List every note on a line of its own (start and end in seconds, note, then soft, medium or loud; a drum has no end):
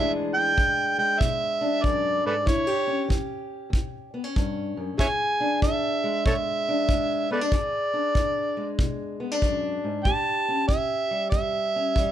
0.00 0.54 E2 medium
0.00 0.57 E3 medium
0.00 0.97 G#3 medium
0.00 0.35 D4 medium
0.00 2.46 G#4 medium
0.00 0.12 E5 medium
0.35 0.94 G5 loud
0.57 1.16 E3 medium
0.57 kick medium
0.98 2.44 G#3 medium
0.98 1.21 G5 medium
1.19 1.79 B2 medium
1.19 1.85 E5 medium
1.19 kick medium
1.61 2.44 D4 medium
1.84 2.25 F#2 medium
1.84 2.26 D5 medium
1.84 kick medium
2.26 2.47 G#2 medium
2.26 2.35 A4 medium
2.26 2.34 B4 medium
2.26 2.49 D5 medium
2.46 3.05 A2 medium
2.46 2.67 E4 medium
2.46 3.11 C#5 medium
2.46 kick medium
2.67 4.98 G4 medium
2.87 4.13 C#4 medium
3.08 3.68 E3 medium
3.08 kick medium
3.70 4.31 E2 medium
3.70 kick medium
4.14 4.24 B3 medium
4.24 4.99 C#4 soft
4.36 4.77 G2 medium
4.36 kick medium
4.77 4.97 F#2 medium
4.98 5.58 E2 medium
4.98 7.49 G#4 medium
4.98 5.07 C#5 medium
4.98 5.06 E5 medium
4.98 5.59 G#5 loud
4.98 kick medium
5.40 6.67 D4 medium
5.62 6.22 E3 medium
5.62 6.22 E5 medium
5.62 kick medium
6.04 6.89 G#3 medium
6.25 6.85 B2 medium
6.25 6.33 A4 medium
6.25 6.35 C#5 medium
6.25 7.27 E5 medium
6.25 kick medium
6.69 7.30 D4 medium
6.89 7.49 E3 medium
6.89 7.51 G#3 medium
6.89 kick medium
7.31 7.41 B3 medium
7.31 7.39 A4 medium
7.31 7.39 B4 medium
7.31 7.52 D5 medium
7.41 7.53 D4 soft
7.52 8.11 E2 medium
7.52 10.03 G#4 medium
7.52 8.76 D5 medium
7.52 kick medium
7.93 9.20 D4 medium
8.15 8.74 E3 medium
8.15 kick medium
8.57 10.03 G#3 medium
8.79 9.38 B2 medium
8.79 kick medium
9.20 9.32 B3 medium
9.32 10.06 D4 soft
9.42 9.84 F#2 medium
9.42 kick medium
9.84 10.06 G#2 medium
10.05 10.65 A2 medium
10.05 12.12 G4 medium
10.05 10.65 A5 loud
10.05 kick medium
10.48 11.75 C#4 medium
10.68 11.28 E3 medium
10.68 11.28 E5 medium
10.68 kick medium
11.11 11.96 G3 medium
11.30 11.91 E2 medium
11.30 12.12 E5 medium
11.30 kick medium
11.76 12.12 C#4 medium
11.96 12.12 E3 medium
11.96 12.12 G3 medium
11.96 kick medium